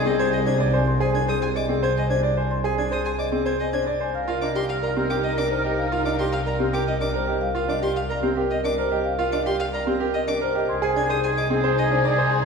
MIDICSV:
0, 0, Header, 1, 7, 480
1, 0, Start_track
1, 0, Key_signature, -3, "minor"
1, 0, Tempo, 545455
1, 764, Time_signature, 3, 2, 24, 8
1, 10956, End_track
2, 0, Start_track
2, 0, Title_t, "Violin"
2, 0, Program_c, 0, 40
2, 52, Note_on_c, 0, 75, 91
2, 139, Note_off_c, 0, 75, 0
2, 172, Note_on_c, 0, 92, 77
2, 259, Note_off_c, 0, 92, 0
2, 288, Note_on_c, 0, 75, 81
2, 377, Note_off_c, 0, 75, 0
2, 410, Note_on_c, 0, 92, 95
2, 498, Note_off_c, 0, 92, 0
2, 890, Note_on_c, 0, 80, 76
2, 978, Note_off_c, 0, 80, 0
2, 1010, Note_on_c, 0, 92, 72
2, 1098, Note_off_c, 0, 92, 0
2, 1131, Note_on_c, 0, 87, 93
2, 1218, Note_off_c, 0, 87, 0
2, 1248, Note_on_c, 0, 80, 66
2, 1337, Note_off_c, 0, 80, 0
2, 1369, Note_on_c, 0, 86, 73
2, 1457, Note_off_c, 0, 86, 0
2, 1612, Note_on_c, 0, 92, 67
2, 1699, Note_off_c, 0, 92, 0
2, 1734, Note_on_c, 0, 75, 74
2, 1821, Note_off_c, 0, 75, 0
2, 1849, Note_on_c, 0, 92, 89
2, 1937, Note_off_c, 0, 92, 0
2, 2326, Note_on_c, 0, 80, 72
2, 2416, Note_off_c, 0, 80, 0
2, 2449, Note_on_c, 0, 92, 60
2, 2537, Note_off_c, 0, 92, 0
2, 2569, Note_on_c, 0, 87, 86
2, 2657, Note_off_c, 0, 87, 0
2, 2686, Note_on_c, 0, 80, 64
2, 2775, Note_off_c, 0, 80, 0
2, 2807, Note_on_c, 0, 86, 64
2, 2896, Note_off_c, 0, 86, 0
2, 3042, Note_on_c, 0, 92, 65
2, 3133, Note_off_c, 0, 92, 0
2, 3165, Note_on_c, 0, 75, 74
2, 3255, Note_off_c, 0, 75, 0
2, 3282, Note_on_c, 0, 92, 80
2, 3373, Note_off_c, 0, 92, 0
2, 3764, Note_on_c, 0, 77, 68
2, 3854, Note_off_c, 0, 77, 0
2, 3884, Note_on_c, 0, 86, 62
2, 3974, Note_off_c, 0, 86, 0
2, 4005, Note_on_c, 0, 84, 88
2, 4095, Note_off_c, 0, 84, 0
2, 4129, Note_on_c, 0, 77, 63
2, 4217, Note_off_c, 0, 77, 0
2, 4246, Note_on_c, 0, 82, 65
2, 4335, Note_off_c, 0, 82, 0
2, 4487, Note_on_c, 0, 86, 60
2, 4576, Note_off_c, 0, 86, 0
2, 4606, Note_on_c, 0, 75, 72
2, 4695, Note_off_c, 0, 75, 0
2, 4731, Note_on_c, 0, 86, 84
2, 4818, Note_off_c, 0, 86, 0
2, 5209, Note_on_c, 0, 77, 70
2, 5297, Note_off_c, 0, 77, 0
2, 5328, Note_on_c, 0, 86, 62
2, 5416, Note_off_c, 0, 86, 0
2, 5446, Note_on_c, 0, 84, 86
2, 5535, Note_off_c, 0, 84, 0
2, 5566, Note_on_c, 0, 77, 69
2, 5655, Note_off_c, 0, 77, 0
2, 5689, Note_on_c, 0, 82, 62
2, 5777, Note_off_c, 0, 82, 0
2, 5927, Note_on_c, 0, 86, 69
2, 6016, Note_off_c, 0, 86, 0
2, 6050, Note_on_c, 0, 75, 68
2, 6138, Note_off_c, 0, 75, 0
2, 6168, Note_on_c, 0, 86, 84
2, 6257, Note_off_c, 0, 86, 0
2, 6646, Note_on_c, 0, 77, 65
2, 6736, Note_off_c, 0, 77, 0
2, 6768, Note_on_c, 0, 86, 61
2, 6857, Note_off_c, 0, 86, 0
2, 6886, Note_on_c, 0, 84, 88
2, 6975, Note_off_c, 0, 84, 0
2, 7006, Note_on_c, 0, 77, 66
2, 7096, Note_off_c, 0, 77, 0
2, 7126, Note_on_c, 0, 82, 64
2, 7215, Note_off_c, 0, 82, 0
2, 7486, Note_on_c, 0, 75, 70
2, 7575, Note_off_c, 0, 75, 0
2, 7606, Note_on_c, 0, 86, 87
2, 7695, Note_off_c, 0, 86, 0
2, 8085, Note_on_c, 0, 77, 79
2, 8174, Note_off_c, 0, 77, 0
2, 8202, Note_on_c, 0, 86, 62
2, 8293, Note_off_c, 0, 86, 0
2, 8324, Note_on_c, 0, 84, 98
2, 8414, Note_off_c, 0, 84, 0
2, 8446, Note_on_c, 0, 77, 70
2, 8535, Note_off_c, 0, 77, 0
2, 8565, Note_on_c, 0, 82, 73
2, 8655, Note_off_c, 0, 82, 0
2, 8924, Note_on_c, 0, 75, 79
2, 9014, Note_off_c, 0, 75, 0
2, 9043, Note_on_c, 0, 86, 91
2, 9134, Note_off_c, 0, 86, 0
2, 9527, Note_on_c, 0, 80, 71
2, 9616, Note_off_c, 0, 80, 0
2, 9647, Note_on_c, 0, 92, 72
2, 9736, Note_off_c, 0, 92, 0
2, 9766, Note_on_c, 0, 87, 94
2, 9855, Note_off_c, 0, 87, 0
2, 9888, Note_on_c, 0, 80, 75
2, 9976, Note_off_c, 0, 80, 0
2, 10008, Note_on_c, 0, 86, 68
2, 10097, Note_off_c, 0, 86, 0
2, 10369, Note_on_c, 0, 75, 80
2, 10457, Note_off_c, 0, 75, 0
2, 10956, End_track
3, 0, Start_track
3, 0, Title_t, "Marimba"
3, 0, Program_c, 1, 12
3, 41, Note_on_c, 1, 68, 92
3, 165, Note_on_c, 1, 72, 78
3, 199, Note_off_c, 1, 68, 0
3, 287, Note_on_c, 1, 80, 78
3, 321, Note_off_c, 1, 72, 0
3, 409, Note_on_c, 1, 72, 90
3, 441, Note_off_c, 1, 80, 0
3, 528, Note_on_c, 1, 74, 78
3, 562, Note_off_c, 1, 72, 0
3, 648, Note_on_c, 1, 80, 76
3, 682, Note_off_c, 1, 74, 0
3, 768, Note_on_c, 1, 84, 100
3, 802, Note_off_c, 1, 80, 0
3, 892, Note_on_c, 1, 72, 75
3, 922, Note_off_c, 1, 84, 0
3, 1010, Note_on_c, 1, 80, 71
3, 1043, Note_off_c, 1, 72, 0
3, 1131, Note_on_c, 1, 68, 88
3, 1162, Note_off_c, 1, 80, 0
3, 1250, Note_on_c, 1, 84, 72
3, 1283, Note_off_c, 1, 68, 0
3, 1372, Note_on_c, 1, 75, 76
3, 1402, Note_off_c, 1, 84, 0
3, 1491, Note_on_c, 1, 68, 79
3, 1523, Note_off_c, 1, 75, 0
3, 1615, Note_on_c, 1, 72, 76
3, 1643, Note_off_c, 1, 68, 0
3, 1733, Note_on_c, 1, 80, 70
3, 1764, Note_off_c, 1, 72, 0
3, 1850, Note_on_c, 1, 72, 83
3, 1883, Note_off_c, 1, 80, 0
3, 2002, Note_off_c, 1, 72, 0
3, 2088, Note_on_c, 1, 80, 64
3, 2210, Note_on_c, 1, 84, 92
3, 2242, Note_off_c, 1, 80, 0
3, 2325, Note_on_c, 1, 72, 64
3, 2362, Note_off_c, 1, 84, 0
3, 2447, Note_on_c, 1, 80, 64
3, 2481, Note_off_c, 1, 72, 0
3, 2568, Note_on_c, 1, 68, 82
3, 2601, Note_off_c, 1, 80, 0
3, 2688, Note_on_c, 1, 84, 72
3, 2722, Note_off_c, 1, 68, 0
3, 2802, Note_on_c, 1, 75, 71
3, 2841, Note_off_c, 1, 84, 0
3, 2921, Note_on_c, 1, 68, 77
3, 2960, Note_off_c, 1, 75, 0
3, 3043, Note_on_c, 1, 72, 73
3, 3079, Note_off_c, 1, 68, 0
3, 3166, Note_on_c, 1, 80, 67
3, 3200, Note_off_c, 1, 72, 0
3, 3287, Note_on_c, 1, 72, 80
3, 3321, Note_off_c, 1, 80, 0
3, 3441, Note_off_c, 1, 72, 0
3, 3530, Note_on_c, 1, 80, 65
3, 3649, Note_on_c, 1, 77, 88
3, 3682, Note_off_c, 1, 80, 0
3, 3772, Note_on_c, 1, 70, 66
3, 3802, Note_off_c, 1, 77, 0
3, 3888, Note_on_c, 1, 75, 66
3, 3923, Note_off_c, 1, 70, 0
3, 4000, Note_on_c, 1, 67, 84
3, 4041, Note_off_c, 1, 75, 0
3, 4159, Note_off_c, 1, 67, 0
3, 4245, Note_on_c, 1, 74, 68
3, 4367, Note_on_c, 1, 67, 76
3, 4400, Note_off_c, 1, 74, 0
3, 4488, Note_on_c, 1, 70, 68
3, 4521, Note_off_c, 1, 67, 0
3, 4606, Note_on_c, 1, 75, 70
3, 4642, Note_off_c, 1, 70, 0
3, 4727, Note_on_c, 1, 70, 78
3, 4761, Note_off_c, 1, 75, 0
3, 4840, Note_on_c, 1, 72, 70
3, 4881, Note_off_c, 1, 70, 0
3, 4964, Note_on_c, 1, 75, 66
3, 4999, Note_off_c, 1, 72, 0
3, 5087, Note_on_c, 1, 77, 84
3, 5120, Note_off_c, 1, 75, 0
3, 5209, Note_on_c, 1, 70, 67
3, 5241, Note_off_c, 1, 77, 0
3, 5325, Note_on_c, 1, 75, 65
3, 5362, Note_off_c, 1, 70, 0
3, 5448, Note_on_c, 1, 67, 79
3, 5480, Note_off_c, 1, 75, 0
3, 5564, Note_on_c, 1, 77, 65
3, 5602, Note_off_c, 1, 67, 0
3, 5688, Note_on_c, 1, 74, 67
3, 5720, Note_off_c, 1, 77, 0
3, 5802, Note_on_c, 1, 67, 80
3, 5842, Note_off_c, 1, 74, 0
3, 5928, Note_on_c, 1, 70, 70
3, 5959, Note_off_c, 1, 67, 0
3, 6048, Note_on_c, 1, 75, 71
3, 6081, Note_off_c, 1, 70, 0
3, 6164, Note_on_c, 1, 70, 80
3, 6202, Note_off_c, 1, 75, 0
3, 6287, Note_on_c, 1, 72, 73
3, 6320, Note_off_c, 1, 70, 0
3, 6441, Note_off_c, 1, 72, 0
3, 6522, Note_on_c, 1, 77, 94
3, 6648, Note_on_c, 1, 70, 72
3, 6679, Note_off_c, 1, 77, 0
3, 6767, Note_on_c, 1, 75, 71
3, 6802, Note_off_c, 1, 70, 0
3, 6880, Note_on_c, 1, 67, 82
3, 6921, Note_off_c, 1, 75, 0
3, 7004, Note_on_c, 1, 77, 71
3, 7039, Note_off_c, 1, 67, 0
3, 7121, Note_on_c, 1, 74, 69
3, 7160, Note_off_c, 1, 77, 0
3, 7239, Note_on_c, 1, 67, 87
3, 7279, Note_off_c, 1, 74, 0
3, 7354, Note_on_c, 1, 70, 74
3, 7398, Note_off_c, 1, 67, 0
3, 7477, Note_on_c, 1, 75, 70
3, 7517, Note_off_c, 1, 70, 0
3, 7600, Note_on_c, 1, 70, 92
3, 7638, Note_off_c, 1, 75, 0
3, 7759, Note_off_c, 1, 70, 0
3, 7841, Note_on_c, 1, 75, 74
3, 7959, Note_on_c, 1, 77, 98
3, 7999, Note_off_c, 1, 75, 0
3, 8083, Note_on_c, 1, 70, 70
3, 8119, Note_off_c, 1, 77, 0
3, 8206, Note_on_c, 1, 75, 76
3, 8240, Note_off_c, 1, 70, 0
3, 8330, Note_on_c, 1, 67, 89
3, 8361, Note_off_c, 1, 75, 0
3, 8446, Note_on_c, 1, 77, 75
3, 8482, Note_off_c, 1, 67, 0
3, 8568, Note_on_c, 1, 74, 76
3, 8601, Note_off_c, 1, 77, 0
3, 8688, Note_on_c, 1, 67, 88
3, 8722, Note_off_c, 1, 74, 0
3, 8808, Note_on_c, 1, 70, 78
3, 8842, Note_off_c, 1, 67, 0
3, 8925, Note_on_c, 1, 75, 77
3, 8962, Note_off_c, 1, 70, 0
3, 9048, Note_on_c, 1, 70, 94
3, 9080, Note_off_c, 1, 75, 0
3, 9171, Note_on_c, 1, 72, 81
3, 9202, Note_off_c, 1, 70, 0
3, 9292, Note_on_c, 1, 75, 74
3, 9323, Note_off_c, 1, 72, 0
3, 9406, Note_on_c, 1, 84, 100
3, 9443, Note_off_c, 1, 75, 0
3, 9524, Note_on_c, 1, 72, 74
3, 9561, Note_off_c, 1, 84, 0
3, 9642, Note_on_c, 1, 80, 75
3, 9680, Note_off_c, 1, 72, 0
3, 9766, Note_on_c, 1, 68, 96
3, 9799, Note_off_c, 1, 80, 0
3, 9890, Note_on_c, 1, 84, 76
3, 9921, Note_off_c, 1, 68, 0
3, 10004, Note_on_c, 1, 75, 77
3, 10042, Note_off_c, 1, 84, 0
3, 10129, Note_on_c, 1, 68, 89
3, 10160, Note_off_c, 1, 75, 0
3, 10250, Note_on_c, 1, 72, 79
3, 10282, Note_off_c, 1, 68, 0
3, 10370, Note_on_c, 1, 80, 82
3, 10402, Note_off_c, 1, 72, 0
3, 10489, Note_on_c, 1, 72, 89
3, 10522, Note_off_c, 1, 80, 0
3, 10615, Note_on_c, 1, 74, 79
3, 10642, Note_off_c, 1, 72, 0
3, 10738, Note_on_c, 1, 80, 74
3, 10764, Note_off_c, 1, 74, 0
3, 10848, Note_on_c, 1, 84, 105
3, 10885, Note_off_c, 1, 80, 0
3, 10956, Note_off_c, 1, 84, 0
3, 10956, End_track
4, 0, Start_track
4, 0, Title_t, "Oboe"
4, 0, Program_c, 2, 68
4, 149, Note_on_c, 2, 68, 58
4, 322, Note_off_c, 2, 68, 0
4, 400, Note_on_c, 2, 68, 43
4, 573, Note_off_c, 2, 68, 0
4, 3646, Note_on_c, 2, 70, 39
4, 3821, Note_off_c, 2, 70, 0
4, 3896, Note_on_c, 2, 70, 50
4, 4071, Note_off_c, 2, 70, 0
4, 4146, Note_on_c, 2, 70, 67
4, 4322, Note_off_c, 2, 70, 0
4, 4399, Note_on_c, 2, 70, 70
4, 4574, Note_off_c, 2, 70, 0
4, 4649, Note_on_c, 2, 70, 72
4, 4824, Note_off_c, 2, 70, 0
4, 4902, Note_on_c, 2, 70, 78
4, 5076, Note_off_c, 2, 70, 0
4, 5150, Note_on_c, 2, 70, 68
4, 5325, Note_off_c, 2, 70, 0
4, 5402, Note_on_c, 2, 70, 66
4, 5577, Note_off_c, 2, 70, 0
4, 5646, Note_on_c, 2, 70, 61
4, 5823, Note_off_c, 2, 70, 0
4, 5901, Note_on_c, 2, 70, 51
4, 6077, Note_off_c, 2, 70, 0
4, 6155, Note_on_c, 2, 70, 39
4, 6330, Note_off_c, 2, 70, 0
4, 9402, Note_on_c, 2, 68, 45
4, 9578, Note_off_c, 2, 68, 0
4, 9660, Note_on_c, 2, 68, 54
4, 9834, Note_off_c, 2, 68, 0
4, 9909, Note_on_c, 2, 68, 74
4, 10084, Note_off_c, 2, 68, 0
4, 10167, Note_on_c, 2, 68, 79
4, 10339, Note_off_c, 2, 68, 0
4, 10413, Note_on_c, 2, 68, 89
4, 10587, Note_off_c, 2, 68, 0
4, 10665, Note_on_c, 2, 68, 88
4, 10838, Note_off_c, 2, 68, 0
4, 10912, Note_on_c, 2, 68, 85
4, 10956, Note_off_c, 2, 68, 0
4, 10956, End_track
5, 0, Start_track
5, 0, Title_t, "Grand piano"
5, 0, Program_c, 3, 0
5, 51, Note_on_c, 3, 60, 75
5, 170, Note_on_c, 3, 72, 88
5, 203, Note_off_c, 3, 60, 0
5, 322, Note_off_c, 3, 72, 0
5, 409, Note_on_c, 3, 62, 78
5, 529, Note_on_c, 3, 74, 97
5, 562, Note_off_c, 3, 62, 0
5, 646, Note_on_c, 3, 72, 76
5, 682, Note_off_c, 3, 74, 0
5, 801, Note_off_c, 3, 72, 0
5, 883, Note_on_c, 3, 68, 92
5, 1007, Note_on_c, 3, 62, 75
5, 1040, Note_off_c, 3, 68, 0
5, 1126, Note_on_c, 3, 72, 67
5, 1161, Note_off_c, 3, 62, 0
5, 1281, Note_off_c, 3, 72, 0
5, 1367, Note_on_c, 3, 74, 66
5, 1486, Note_on_c, 3, 60, 68
5, 1521, Note_off_c, 3, 74, 0
5, 1607, Note_on_c, 3, 72, 84
5, 1641, Note_off_c, 3, 60, 0
5, 1761, Note_off_c, 3, 72, 0
5, 1846, Note_on_c, 3, 62, 72
5, 1965, Note_on_c, 3, 74, 80
5, 2001, Note_off_c, 3, 62, 0
5, 2088, Note_on_c, 3, 72, 68
5, 2121, Note_off_c, 3, 74, 0
5, 2241, Note_off_c, 3, 72, 0
5, 2325, Note_on_c, 3, 68, 89
5, 2449, Note_on_c, 3, 62, 71
5, 2480, Note_off_c, 3, 68, 0
5, 2565, Note_on_c, 3, 72, 68
5, 2602, Note_off_c, 3, 62, 0
5, 2721, Note_off_c, 3, 72, 0
5, 2803, Note_on_c, 3, 74, 61
5, 2922, Note_on_c, 3, 60, 60
5, 2960, Note_off_c, 3, 74, 0
5, 3041, Note_on_c, 3, 72, 78
5, 3079, Note_off_c, 3, 60, 0
5, 3199, Note_off_c, 3, 72, 0
5, 3283, Note_on_c, 3, 62, 71
5, 3403, Note_on_c, 3, 74, 81
5, 3440, Note_off_c, 3, 62, 0
5, 3525, Note_on_c, 3, 72, 66
5, 3560, Note_off_c, 3, 74, 0
5, 3680, Note_off_c, 3, 72, 0
5, 3763, Note_on_c, 3, 65, 93
5, 3885, Note_on_c, 3, 62, 66
5, 3920, Note_off_c, 3, 65, 0
5, 4006, Note_on_c, 3, 67, 62
5, 4041, Note_off_c, 3, 62, 0
5, 4161, Note_off_c, 3, 67, 0
5, 4246, Note_on_c, 3, 70, 60
5, 4369, Note_on_c, 3, 60, 62
5, 4401, Note_off_c, 3, 70, 0
5, 4489, Note_on_c, 3, 67, 80
5, 4522, Note_off_c, 3, 60, 0
5, 4642, Note_off_c, 3, 67, 0
5, 4726, Note_on_c, 3, 62, 67
5, 4849, Note_on_c, 3, 70, 79
5, 4881, Note_off_c, 3, 62, 0
5, 4969, Note_on_c, 3, 67, 67
5, 5002, Note_off_c, 3, 70, 0
5, 5122, Note_off_c, 3, 67, 0
5, 5208, Note_on_c, 3, 65, 82
5, 5327, Note_on_c, 3, 62, 70
5, 5362, Note_off_c, 3, 65, 0
5, 5448, Note_on_c, 3, 67, 67
5, 5481, Note_off_c, 3, 62, 0
5, 5602, Note_off_c, 3, 67, 0
5, 5685, Note_on_c, 3, 70, 62
5, 5805, Note_on_c, 3, 60, 62
5, 5841, Note_off_c, 3, 70, 0
5, 5924, Note_on_c, 3, 67, 81
5, 5961, Note_off_c, 3, 60, 0
5, 6080, Note_off_c, 3, 67, 0
5, 6167, Note_on_c, 3, 62, 70
5, 6283, Note_on_c, 3, 70, 86
5, 6321, Note_off_c, 3, 62, 0
5, 6402, Note_on_c, 3, 67, 65
5, 6440, Note_off_c, 3, 70, 0
5, 6559, Note_off_c, 3, 67, 0
5, 6641, Note_on_c, 3, 65, 89
5, 6761, Note_on_c, 3, 62, 73
5, 6799, Note_off_c, 3, 65, 0
5, 6882, Note_on_c, 3, 67, 66
5, 6919, Note_off_c, 3, 62, 0
5, 7040, Note_off_c, 3, 67, 0
5, 7121, Note_on_c, 3, 70, 67
5, 7242, Note_on_c, 3, 60, 69
5, 7279, Note_off_c, 3, 70, 0
5, 7363, Note_on_c, 3, 67, 80
5, 7399, Note_off_c, 3, 60, 0
5, 7520, Note_off_c, 3, 67, 0
5, 7607, Note_on_c, 3, 62, 69
5, 7729, Note_on_c, 3, 70, 85
5, 7761, Note_off_c, 3, 62, 0
5, 7846, Note_on_c, 3, 67, 77
5, 7882, Note_off_c, 3, 70, 0
5, 8001, Note_off_c, 3, 67, 0
5, 8084, Note_on_c, 3, 65, 94
5, 8206, Note_on_c, 3, 62, 79
5, 8240, Note_off_c, 3, 65, 0
5, 8323, Note_on_c, 3, 67, 68
5, 8361, Note_off_c, 3, 62, 0
5, 8480, Note_off_c, 3, 67, 0
5, 8563, Note_on_c, 3, 70, 66
5, 8682, Note_on_c, 3, 60, 67
5, 8720, Note_off_c, 3, 70, 0
5, 8802, Note_on_c, 3, 67, 94
5, 8840, Note_off_c, 3, 60, 0
5, 8960, Note_off_c, 3, 67, 0
5, 9043, Note_on_c, 3, 62, 75
5, 9163, Note_on_c, 3, 70, 90
5, 9200, Note_off_c, 3, 62, 0
5, 9285, Note_on_c, 3, 67, 74
5, 9320, Note_off_c, 3, 70, 0
5, 9441, Note_off_c, 3, 67, 0
5, 9522, Note_on_c, 3, 68, 102
5, 9646, Note_on_c, 3, 62, 79
5, 9679, Note_off_c, 3, 68, 0
5, 9759, Note_on_c, 3, 72, 75
5, 9801, Note_off_c, 3, 62, 0
5, 9919, Note_off_c, 3, 72, 0
5, 10121, Note_on_c, 3, 60, 74
5, 10240, Note_on_c, 3, 72, 92
5, 10279, Note_off_c, 3, 60, 0
5, 10399, Note_off_c, 3, 72, 0
5, 10483, Note_on_c, 3, 62, 79
5, 10604, Note_on_c, 3, 74, 97
5, 10640, Note_off_c, 3, 62, 0
5, 10719, Note_on_c, 3, 72, 81
5, 10760, Note_off_c, 3, 74, 0
5, 10878, Note_off_c, 3, 72, 0
5, 10956, End_track
6, 0, Start_track
6, 0, Title_t, "String section"
6, 0, Program_c, 4, 48
6, 0, Note_on_c, 4, 63, 81
6, 0, Note_on_c, 4, 68, 87
6, 612, Note_off_c, 4, 63, 0
6, 612, Note_off_c, 4, 68, 0
6, 3642, Note_on_c, 4, 70, 67
6, 3644, Note_on_c, 4, 63, 68
6, 6368, Note_off_c, 4, 70, 0
6, 6369, Note_off_c, 4, 63, 0
6, 9399, Note_on_c, 4, 63, 75
6, 9403, Note_on_c, 4, 68, 78
6, 10956, Note_off_c, 4, 63, 0
6, 10956, Note_off_c, 4, 68, 0
6, 10956, End_track
7, 0, Start_track
7, 0, Title_t, "Double bass section"
7, 0, Program_c, 5, 48
7, 0, Note_on_c, 5, 36, 86
7, 3514, Note_off_c, 5, 36, 0
7, 3645, Note_on_c, 5, 36, 69
7, 9273, Note_off_c, 5, 36, 0
7, 9403, Note_on_c, 5, 36, 79
7, 10956, Note_off_c, 5, 36, 0
7, 10956, End_track
0, 0, End_of_file